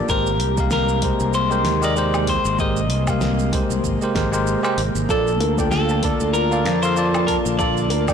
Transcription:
0.00 8.14 A#3 medium
0.00 2.55 G4 medium
0.09 0.41 G#1 loud
0.09 5.05 C3 medium
0.09 0.29 G#3 medium
0.09 5.05 G#3 medium
0.09 0.29 G4 medium
0.09 0.71 A#4 medium
0.09 0.30 A#4 medium
0.09 0.30 C5 medium
0.09 kick loud
0.09 shaker medium
0.27 shaker soft
0.40 1.11 C2 loud
0.40 open hi-hat medium
0.57 0.99 G#3 medium
0.57 1.00 G4 medium
0.57 1.00 A#4 medium
0.57 1.01 F5 medium
0.57 kick loud
0.57 shaker medium
0.71 1.34 A#4 medium
0.71 snare medium
0.71 shaker medium
0.89 shaker soft
1.02 1.47 G#3 medium
1.02 1.48 G4 medium
1.02 1.48 A#4 medium
1.02 1.49 C5 medium
1.02 kick loud
1.02 open hi-hat medium
1.20 1.66 C2 loud
1.20 shaker medium
1.34 1.84 C5 loud
1.34 shaker medium
1.50 1.79 G#3 medium
1.50 1.79 G4 medium
1.50 1.80 A#4 medium
1.50 1.80 C5 loud
1.50 shaker soft
1.65 2.36 D#2 medium
1.65 snare medium
1.65 open hi-hat medium
1.81 1.93 G#3 medium
1.81 1.93 G4 medium
1.81 1.93 A#4 medium
1.81 2.29 D5 loud
1.81 1.94 D#5 loud
1.81 shaker medium
1.96 2.56 G#3 medium
1.96 2.56 G4 medium
1.96 2.57 A#4 medium
1.96 2.57 C5 loud
1.96 shaker medium
2.14 low woodblock medium
2.14 shaker soft
2.27 2.60 C5 medium
2.27 kick medium
2.27 open hi-hat medium
2.45 2.90 G#1 loud
2.45 shaker medium
2.59 2.79 G#3 medium
2.59 2.79 G4 medium
2.59 2.80 A#4 medium
2.59 2.80 C5 loud
2.59 4.43 D#5 medium
2.59 kick loud
2.59 shaker medium
2.77 shaker soft
2.90 3.61 C2 medium
2.90 open hi-hat medium
3.07 3.49 G#3 medium
3.07 3.50 G4 medium
3.07 3.50 A#4 medium
3.07 3.51 F5 medium
3.07 kick loud
3.07 low woodblock medium
3.07 shaker medium
3.21 snare medium
3.21 shaker medium
3.39 shaker soft
3.52 3.97 G#3 medium
3.52 3.98 G4 medium
3.52 3.98 A#4 medium
3.52 3.98 C5 medium
3.52 kick loud
3.52 open hi-hat medium
3.70 3.80 C2 medium
3.70 shaker medium
3.84 3.96 G#1 medium
3.84 kick medium
3.84 shaker medium
4.02 4.13 G#3 medium
4.02 4.13 G4 medium
4.02 4.14 A#4 medium
4.02 4.14 C5 medium
4.02 shaker soft
4.14 4.55 G#1 medium
4.14 4.28 G#3 medium
4.14 4.29 G4 medium
4.14 4.29 A#4 medium
4.14 4.29 C5 medium
4.14 kick loud
4.14 snare medium
4.14 open hi-hat medium
4.32 4.60 G#3 loud
4.32 4.60 G4 medium
4.32 4.60 A#4 medium
4.32 4.61 C5 loud
4.32 shaker medium
4.47 shaker medium
4.63 4.80 G#3 medium
4.63 4.81 G4 medium
4.63 4.81 A#4 medium
4.63 4.81 C5 loud
4.63 low woodblock medium
4.63 shaker soft
4.78 4.90 G#1 medium
4.78 open hi-hat medium
4.95 5.05 G#1 medium
4.95 shaker medium
5.09 5.40 A#1 loud
5.09 8.14 D3 medium
5.09 5.29 A#3 medium
5.09 5.30 F4 medium
5.09 8.14 F4 medium
5.09 5.25 A4 medium
5.09 5.30 A4 medium
5.09 5.70 A4 medium
5.09 5.30 D5 loud
5.09 8.14 A5 medium
5.09 kick loud
5.09 shaker medium
5.27 shaker soft
5.40 6.11 D2 medium
5.40 5.57 A#4 medium
5.40 open hi-hat medium
5.40 high bongo medium
5.58 6.00 A#3 medium
5.58 6.00 F4 medium
5.58 6.00 A4 medium
5.58 5.71 D5 medium
5.58 6.01 G5 medium
5.58 kick loud
5.58 high bongo soft
5.58 shaker medium
5.71 6.30 A4 medium
5.71 5.88 F5 medium
5.71 snare medium
5.71 shaker medium
5.89 6.02 A5 medium
5.89 shaker soft
6.02 6.47 A#3 medium
6.02 6.48 F4 medium
6.02 6.13 A4 loud
6.02 6.48 A4 medium
6.02 6.49 D5 medium
6.02 kick loud
6.02 open hi-hat medium
6.20 6.66 D2 medium
6.20 shaker medium
6.33 6.82 A#4 loud
6.33 6.44 A#4 medium
6.33 shaker medium
6.51 6.79 A#3 medium
6.51 6.79 F4 medium
6.51 6.80 A4 medium
6.51 6.80 D5 medium
6.51 6.64 F5 loud
6.51 shaker soft
6.66 7.36 F2 medium
6.66 6.82 F5 medium
6.66 snare medium
6.66 open hi-hat medium
6.83 6.93 A#3 loud
6.83 6.94 F4 medium
6.83 6.94 A4 medium
6.83 7.25 C5 medium
6.83 6.94 F5 loud
6.83 shaker medium
6.96 7.56 A#3 loud
6.96 7.56 F4 medium
6.96 7.57 A4 medium
6.96 7.57 D5 loud
6.96 shaker medium
7.14 high bongo soft
7.14 low woodblock medium
7.14 shaker soft
7.27 7.36 A#4 medium
7.27 7.45 A5 medium
7.27 kick medium
7.27 open hi-hat medium
7.46 7.91 A#1 loud
7.46 shaker medium
7.59 7.79 A#3 medium
7.59 7.80 F4 medium
7.59 7.75 A4 medium
7.59 7.80 A4 medium
7.59 8.14 D5 loud
7.59 7.80 D5 loud
7.59 kick loud
7.59 shaker medium
7.77 shaker soft
7.90 8.14 D2 medium
7.90 8.07 A#4 medium
7.90 open hi-hat medium
7.90 high bongo soft
8.08 8.14 A#3 medium
8.08 8.14 F4 medium
8.08 8.14 A4 medium
8.08 8.14 D5 medium
8.08 8.14 G5 medium
8.08 kick loud
8.08 high bongo soft
8.08 low woodblock medium
8.08 shaker medium

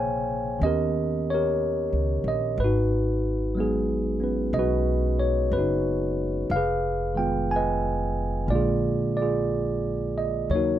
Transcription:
0.00 0.57 A#1 medium
0.00 0.62 C3 soft
0.00 0.61 C#3 soft
0.00 0.61 A#3 soft
0.00 0.62 G#4 medium
0.00 0.59 C5 medium
0.00 0.62 C#5 medium
0.00 0.63 F5 medium
0.00 0.62 G5 medium
0.00 0.64 G#5 medium
0.59 1.89 D#2 medium
0.59 2.57 D#3 medium
0.59 2.58 B3 soft
0.59 2.59 C#4 soft
0.59 1.24 D#5 medium
0.65 1.33 G4 medium
0.65 1.33 A#4 medium
1.30 2.58 A#4 medium
1.30 2.23 C#5 medium
1.35 2.58 G4 soft
1.93 2.23 C#2 soft
2.24 2.55 A#1 medium
2.24 2.60 D#5 medium
2.58 4.50 G#1 medium
2.58 4.22 B4 medium
2.64 4.54 D#4 medium
2.64 4.53 F#4 medium
3.55 6.51 F#3 soft
3.55 6.52 G#3 soft
3.55 4.19 B3 soft
3.60 6.53 G#4 medium
4.20 6.51 B3 soft
4.20 6.51 C#4 soft
4.20 4.58 B4 soft
4.53 5.48 B1 medium
4.53 5.22 D#5 medium
4.59 5.57 F#4 medium
4.59 5.52 B4 medium
5.19 5.53 C#5 medium
5.52 6.47 F#1 medium
5.52 6.54 B4 medium
5.58 6.50 D#4 soft
5.58 6.50 F#4 soft
6.50 8.45 F1 medium
6.50 7.13 F5 medium
6.56 8.48 G#4 medium
6.56 7.55 B4 medium
7.14 8.48 D#3 soft
7.14 8.47 G#3 soft
7.14 8.50 B3 soft
7.14 7.51 G5 medium
7.19 8.50 F4 soft
7.51 8.46 G#5 medium
7.56 8.48 B4 medium
7.56 8.48 D#5 medium
8.47 10.46 A#1 medium
8.47 10.49 D3 soft
8.47 10.50 G#3 soft
8.47 10.51 A#3 soft
8.47 9.13 D5 medium
8.52 8.54 F4 medium
8.52 9.21 F4 medium
8.52 9.21 G#4 soft
9.17 10.20 D5 medium
9.22 10.49 F4 soft
9.22 10.49 G#4 soft
10.18 10.52 D#5 medium
10.49 10.79 D#2 medium
10.49 10.79 C#3 soft
10.49 10.79 F#3 soft
10.49 10.79 A#3 soft
10.49 10.79 C#5 medium
10.55 10.79 D#4 soft
10.55 10.79 F#4 medium
10.55 10.79 A#4 soft

